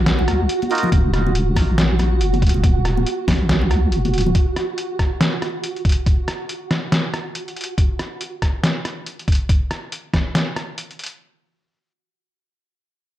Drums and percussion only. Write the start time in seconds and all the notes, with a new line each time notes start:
0.06 snare, closed hi-hat
0.19 muted conga
0.28 cross-stick, closed hi-hat, high conga
0.49 closed hi-hat
0.62 closed hi-hat, high conga
0.71 closed hi-hat
0.75 closed hi-hat
0.78 closed hi-hat
0.83 muted conga, low conga
0.92 kick, closed hi-hat, high conga
1.14 cross-stick, closed hi-hat
1.26 muted conga, high conga
1.35 closed hi-hat
1.56 kick, cross-stick, open hi-hat, muted conga, high conga
1.78 snare, closed hi-hat
1.99 cross-stick, closed hi-hat, high conga, low conga
2.21 closed hi-hat
2.33 closed hi-hat, high conga
2.42 kick, closed hi-hat
2.47 closed hi-hat
2.49 closed hi-hat
2.54 muted conga
2.64 kick, closed hi-hat, high conga
2.85 cross-stick, closed hi-hat
2.97 muted conga, high conga
3.06 closed hi-hat
3.28 kick, cross-stick, snare, open hi-hat, muted conga, high conga
3.49 snare, closed hi-hat
3.62 muted conga
3.70 cross-stick, closed hi-hat, high conga
3.92 closed hi-hat
4.05 closed hi-hat, high conga
4.14 closed hi-hat
4.18 closed hi-hat
4.21 closed hi-hat
4.26 muted conga, low conga
4.35 kick, closed hi-hat
4.56 cross-stick, closed hi-hat
4.78 closed hi-hat
4.99 kick, cross-stick, closed hi-hat
5.21 snare, closed hi-hat
5.42 cross-stick, closed hi-hat
5.64 closed hi-hat
5.76 closed hi-hat
5.85 kick, closed hi-hat
5.89 closed hi-hat
5.92 closed hi-hat
6.06 kick, closed hi-hat
6.28 cross-stick, closed hi-hat
6.49 closed hi-hat
6.71 cross-stick, snare, closed hi-hat
6.92 snare, closed hi-hat
7.14 cross-stick, closed hi-hat
7.35 closed hi-hat
7.48 closed hi-hat
7.56 closed hi-hat
7.61 closed hi-hat
7.64 closed hi-hat
7.78 kick, closed hi-hat
7.99 cross-stick, closed hi-hat
8.21 closed hi-hat
8.42 kick, cross-stick, closed hi-hat
8.63 snare, closed hi-hat
8.85 cross-stick, closed hi-hat
9.06 closed hi-hat
9.19 closed hi-hat
9.28 kick, closed hi-hat
9.32 closed hi-hat
9.35 closed hi-hat
9.49 kick, closed hi-hat
9.71 cross-stick, closed hi-hat
9.92 closed hi-hat
10.14 kick, cross-stick, snare, closed hi-hat
10.35 snare, closed hi-hat
10.56 cross-stick, closed hi-hat
10.78 closed hi-hat
10.91 closed hi-hat
10.99 closed hi-hat
11.04 closed hi-hat
11.06 closed hi-hat